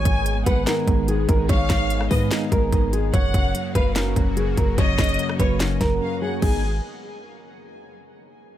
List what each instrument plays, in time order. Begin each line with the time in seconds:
Already playing: tine electric piano G#2, analog synth pad D#3 G#3 B3 G#4, nylon-string guitar C#5, violin section G#5
0.05 808-style bass G#1, tine electric piano D#3, kick, closed hi-hat
0.26 tine electric piano G#3, closed hi-hat
0.46 808-style bass G#1, tine electric piano B3, nylon-string guitar B4, violin section F#5, kick, closed hi-hat
0.67 tine electric piano D#4, nylon-string guitar A#4, snare, clap, closed hi-hat
0.88 808-style bass G#1, tine electric piano G#2, kick, closed hi-hat
1.08 tine electric piano D#3, nylon-string guitar G#4, closed hi-hat
1.29 808-style bass G#1, tine electric piano G#3, nylon-string guitar A#4, kick, closed hi-hat
1.49 808-style bass G#1, tine electric piano G#2, nylon-string guitar C#5, violin section F5, kick, closed hi-hat
1.70 808-style bass G#1, tine electric piano D#3, kick, cross-stick, snare, clap, closed hi-hat
1.90 tine electric piano G#3, closed hi-hat
2.01 cross-stick
2.11 808-style bass G#2, tine electric piano B3, nylon-string guitar B4, violin section D#5, kick, open hi-hat
2.31 tine electric piano D#4, snare, clap, closed hi-hat
2.52 808-style bass G#1, tine electric piano G#2, nylon-string guitar A#4, kick, closed hi-hat
2.72 808-style bass G#1, tine electric piano D#3, kick, closed hi-hat
2.93 tine electric piano G#3, nylon-string guitar G#4, closed hi-hat
3.14 808-style bass F#1, tine electric piano F#2, analog synth pad C#3 F#3 A#3 F#4, nylon-string guitar C#5, violin section F#5, kick, closed hi-hat
3.34 808-style bass F#1, tine electric piano C#3, kick, closed hi-hat
3.55 tine electric piano F#3, closed hi-hat
3.75 808-style bass F#1, tine electric piano A#3, nylon-string guitar B4, violin section F5, kick, closed hi-hat
3.96 tine electric piano C#4, nylon-string guitar A#4, snare, clap, closed hi-hat
4.16 808-style bass F#1, tine electric piano F#2, kick, closed hi-hat
4.37 tine electric piano C#3, nylon-string guitar G#4, closed hi-hat
4.57 808-style bass F#1, tine electric piano F#3, nylon-string guitar A#4, kick, closed hi-hat
4.78 808-style bass F#1, tine electric piano F#2, nylon-string guitar C#5, violin section D#5, kick, closed hi-hat
4.99 808-style bass F#1, tine electric piano C#3, kick, cross-stick, snare, clap, closed hi-hat
5.04 closed hi-hat
5.09 closed hi-hat
5.14 closed hi-hat
5.19 tine electric piano F#3, closed hi-hat
5.29 cross-stick
5.39 808-style bass F#1, tine electric piano A#3, nylon-string guitar B4, violin section C#5, kick, closed hi-hat
5.60 tine electric piano C#4, snare, clap, closed hi-hat
5.81 808-style bass F#1, tine electric piano F#2, nylon-string guitar A#4, kick, snare, closed hi-hat
6.01 tine electric piano C#3, violin section F5
6.22 tine electric piano F#3, nylon-string guitar G#4, violin section F#5
6.42 808-style bass G#1, tine electric piano D#3 G#3 B3 D#4, analog synth pad D#3 G#3 B3 G#4, nylon-string guitar G#4, violin section G#5, kick, crash